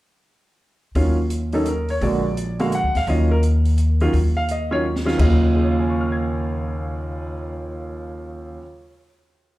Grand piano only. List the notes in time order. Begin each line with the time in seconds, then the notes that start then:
0.96 D#3 F#3 C#4 F4
1.53 D#3 F#3 C#4 D#4 A4
1.68 A#4
1.90 C#5
2.02 D3 G#3 A#3 F#4 D5
2.59 D3 G#3 A#3 F#4 F5
2.75 F#5
2.97 F5
3.08 D#3 F#3 C#4 F4 D#5
3.31 A#4
4.01 D#3 F#3 C#4 F4
4.37 F5
4.51 D#5
4.71 D#3 F#3 C#4 F4 C#5
5.05 D#3 F#3 C#4 F4
5.18 D#2 C#3 F#3 F4 D#5
5.55 G#4
5.62 C#5
5.71 F5
5.80 G#5
5.90 C#6
6.01 F6
6.12 G#6